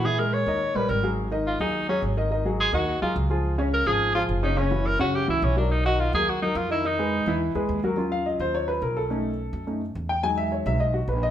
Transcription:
<<
  \new Staff \with { instrumentName = "Grand piano" } { \time 4/4 \key ees \minor \tempo 4 = 212 << { <fes fes' fes''>8 <aes aes' bes'>4 <ees ees' ees''>4 <g g' bes'>4 <ges ges' aes'>8~ | <ges ges' aes'>8 <ees ees' ees''>4 <ges ges' aes'>4 <ges ges' aes'>4 <ees ees' ees''>8 | <ees ees' ees''>8 <ges ges' aes'>4 <ees ees' ees''>4 <ges ges' aes'>4 <f f' aes'>8~ | <f f' aes'>8 <des des' des''>4 <f f' aes'>4 <f f' aes'>4 <des des' des''>8 |
<des des' des''>8 <fes fes' ges'>4 <des des' des''>4 <fes fes' ges'>4 <ges ges' bes'>8~ | <ges ges' bes'>8 <dis dis' dis''>4 <fis fis' ais'>4 <fis fis' ais'>4 <dis dis' dis''>8 | <ees ees' ees''>8 <aes aes' ces''>4 <fes fes' fes''>4 <gis gis' b'>4 <fis fis' bes'>8 | r8 f''8 ees''8 c''8 des''8 ces''8 bes'8 a'8~ |
a'2 r4. g''8 | gis''8 e''8 des''8 e''8 dis''8 fis'8 b'8 dis''8 | } \\ { r1 | r1 | r1 | r1 |
r1 | r1 | r1 | <ges des' f'>1 |
<a des' dis'>8 r4. <a des' dis'>8 r4. | <fis gis dis'>4. <fis gis dis'>8 r2 | } >> }
  \new Staff \with { instrumentName = "Tenor saxophone" } { \time 4/4 \key ees \minor aes'8 bes'8 des''4. ces''8 bes'8. r16 | r4 f'8 ees'4 des'8 r4 | r4 aes'8 ges'4 f'8 r4 | r4 bes'8 aes'4 f'8 r8 ees'8 |
des'4 bes'8 ges'8 g'8 fes'8 des'8 d'8 | dis'8 fis'8 eis'8 aes'8 fis'8 dis'8 eis'8 fes'8 | ees'2 r2 | r1 |
r1 | r1 | }
  \new Staff \with { instrumentName = "Upright bass" } { \clef bass \time 4/4 \key ees \minor ais,4. ees,4 bes,,8 aes,,4~ | aes,,4. ees,4. aes,,4~ | aes,,4. ees,4 ees,8 des,4~ | des,4. aes,,4. ges,,4~ |
ges,,4. ges,4 des,8 ces,4~ | ces,4. dis,4. eis,4~ | eis,4. fes,4 e,8 ees,4~ | ees,4. ees,4. ces,4~ |
ces,4. fis,4. fes,4~ | fes,4. b,,4. bes,,4 | }
>>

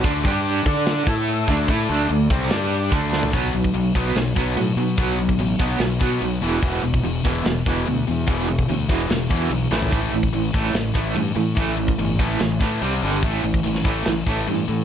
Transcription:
<<
  \new Staff \with { instrumentName = "Tonewheel organ" } { \time 4/4 \key b \phrygian \tempo 4 = 146 << { <d'' d'''>2~ <d'' d'''>8 <e'' e'''>4 <d'' d'''>8~ | <d'' d'''>1 | r1 | r1 |
r1 | r1 | r1 | r1 |
r1 | } \\ { a'8 g'4 a'2~ a'8~ | a'2 g'4 a'4 | r1 | r1 |
r1 | r1 | r1 | r1 |
r1 | } >> }
  \new Staff \with { instrumentName = "Overdriven electric guitar" } { \clef bass \time 4/4 \key b \phrygian <d a d'>8 <g d' g'>4 <d' a' d''>4 <a e' a'>4 <d a d'>8 | <a e' a'>8 <d a d'>8 <d a>8 <c g c'>8 <g d' g'>4 <d a d'>4 | <b, fis b>8 <b, fis>8 <b, fis>8 <b, fis b>8 <b, fis>8 <b, fis b>8 <b, fis>8 <b, fis>8 | <b, fis b>8 <b, fis>8 <b, fis>8 <b, fis b>8 <b, fis>8 <b, fis b>8 <b, fis>8 <e, b, e>8 |
<e, b, e>8 <e, b,>8 <e, b,>8 <e, b, e>8 <e, b,>8 <e, b, e>8 <e, b,>8 <e, b,>8 | <e, b, e>8 <e, b,>8 <e, b,>8 <e, b, e>8 <e, b,>8 <e, b, e>8 <e, b,>8 <a, e a>8 | <a, e a>8 <a, e>8 <a, e>8 <a, e a>8 <a, e>8 <a, e a>8 <a, e>8 <a, e>8 | <a, e a>8 <a, e>8 <a, e>8 <a, e a>8 <a, e>8 <a, e a>8 <c g c'>8 <g, d g>8 |
<a, e a>8 <a, e>8 <a, e>8 <a, e a>8 <a, e>8 <a, e a>8 <a, e>8 <a, e>8 | }
  \new Staff \with { instrumentName = "Overdriven electric guitar" } { \clef bass \time 4/4 \key b \phrygian <d a d'>8 <g d' g'>4 <d' a' d''>4 <a e' a'>4 <d a d'>8 | <a e' a'>8 <d a d'>8 <d a>8 <c g c'>8 <g d' g'>4 <d a d'>4 | <b, fis b>8 <b, fis>8 <b, fis>8 <b, fis b>8 <b, fis>8 <b, fis b>8 <b, fis>8 <b, fis>8 | <b, fis b>8 <b, fis>8 <b, fis>8 <b, fis b>8 <b, fis>8 <b, fis b>8 <b, fis>8 <e, b, e>8 |
<e, b, e>8 <e, b,>8 <e, b,>8 <e, b, e>8 <e, b,>8 <e, b, e>8 <e, b,>8 <e, b,>8 | <e, b, e>8 <e, b,>8 <e, b,>8 <e, b, e>8 <e, b,>8 <e, b, e>8 <e, b,>8 <a, e a>8 | <a, e a>8 <a, e>8 <a, e>8 <a, e a>8 <a, e>8 <a, e a>8 <a, e>8 <a, e>8 | <a, e a>8 <a, e>8 <a, e>8 <a, e a>8 <a, e>8 <a, e a>8 <c g c'>8 <g, d g>8 |
<a, e a>8 <a, e>8 <a, e>8 <a, e a>8 <a, e>8 <a, e a>8 <a, e>8 <a, e>8 | }
  \new Staff \with { instrumentName = "Fingered electric bass" } { \clef bass \time 4/4 \key b \phrygian d,8 g,4 d4 a,4 d,8 | a,8 d,8 d,8 c,8 g,4 d,4 | b,,8 b,,8 b,,8 b,,8 b,,8 b,,8 a,8 b,8 | b,,4 a,,8 b,,8 b,,8 b,8 b,,8 e,,8 |
e,,8 e,,8 e,,8 e,,8 e,,8 e,,8 d,8 e,8 | e,,4 d,8 e,,8 e,,8 e,8 b,,8 a,,8 | a,,8 a,,8 a,,8 a,,8 a,,8 a,,8 g,8 a,8 | a,,4 g,,8 a,,8 a,,8 a,8 c,8 g,,8 |
a,,8 a,,8 a,,8 a,,8 a,,8 a,,8 g,8 a,8 | }
  \new DrumStaff \with { instrumentName = "Drums" } \drummode { \time 4/4 <cymc bd>8 bd8 cymc8 bd8 <cymc sn>8 bd8 cymc8 bd8 | <cymc bd>4 cymc8 bd8 <cymc sn>4 <cymc bd>8 sn16 tomfh16 | <cymc bd>8 cymc16 bd16 cymc8 <cymc bd>8 <cymc sn>8 <cymc bd>8 cymc8 cymc8 | <cymc bd>8 cymc16 bd16 cymc8 <cymc bd>8 <cymc sn>8 <cymc bd>8 cymc8 cymc8 |
<cymc bd>8 cymc16 bd16 cymc8 <cymc bd>8 <cymc sn>8 <cymc bd>8 cymc8 cymc8 | <cymc bd>8 cymc16 bd16 cymc8 <cymc bd>8 <cymc sn>8 <cymc bd>8 cymc8 sn16 tomfh16 | <cymc bd>8 cymc16 bd16 cymc8 <cymc bd>8 <cymc sn>8 <cymc bd>8 cymc8 cymc8 | <cymc bd>8 cymc16 bd16 cymc8 <cymc bd>8 <cymc sn>8 <cymc bd>8 cymc8 cymc8 |
<cymc bd>8 cymc16 bd16 cymc16 sn16 <cymc bd>8 <cymc sn>8 <cymc bd>8 cymc8 cymc8 | }
>>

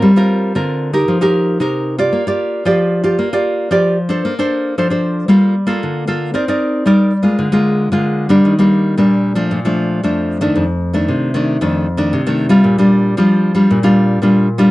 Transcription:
\new Staff \with { instrumentName = "Nylon-string guitar" } { \time 4/4 \key bes \major \tempo 4 = 114 << { <c' f' bes'>16 <c' f' bes'>8. <c' f' bes'>8. <ees' g' bes'>8 <ees' g' bes'>8. <ees' g' bes'>8. <f' g' d''>16~ | <f' g' d''>16 <f' g' d''>8. <f' g' d''>8. <f' g' d''>8 <f' g' d''>8. <f' g' d''>8 r16 <d' a' c''>16~ | <d' a' c''>16 <d' a' c''>8. <d' a' c''>16 <d' a' c''>8. <bes f' a'>8 r16 <bes f' a'>8. <bes f' a'>8 | <ees' bes' d''>16 <ees' bes' d''>8. <ees' bes' d''>8 r16 <aes bes f'>8 <aes bes f'>8. <aes bes f'>8. <g bes d'>16~ |
<g bes d'>16 <g bes d'>8. <g bes d'>8. <f a d'>8 <f a d'>8. <f a d'>8. <ees a d'>16~ | <ees a d'>16 r8 <ees a d'>8. <ees a d'>8 <ees a d'>8 r16 <ees a d'>8 <ees a d'>8 <g d' f'>16~ | <g d' f'>16 <g d' f'>8. <g d' f'>8. <g d' f'>8 <g d' f'>8. <g d' f'>8 r16 <g d' f'>16 | } \\ { g4 d4 f4 c4 | bes4 f4 bes4 f4 | bes4 f4 g4 d4 | c'4 g4 d4 d4 |
ees4 bes,4 bes,4 f,4 | f,4 c4 f,4 c4 | bes,4 f4 bes,4 bes,4 | } >> }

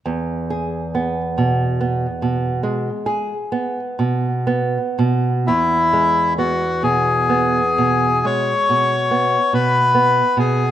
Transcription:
<<
  \new Staff \with { instrumentName = "Bandoneon" } { \time 12/8 \key e \major \tempo 4. = 45 r1. | e'4 fis'8 gis'4. cis''4. b'4 gis'8 | }
  \new Staff \with { instrumentName = "Nylon-string guitar" } { \clef bass \time 12/8 \key e \major e,8 gis'8 b8 b,8 b8 b,8 gis8 gis'8 b8 b,8 b8 b,8 | e,8 gis8 b8 b,8 b8 b,8 gis8 b,8 b8 b,8 b8 b,8 | }
>>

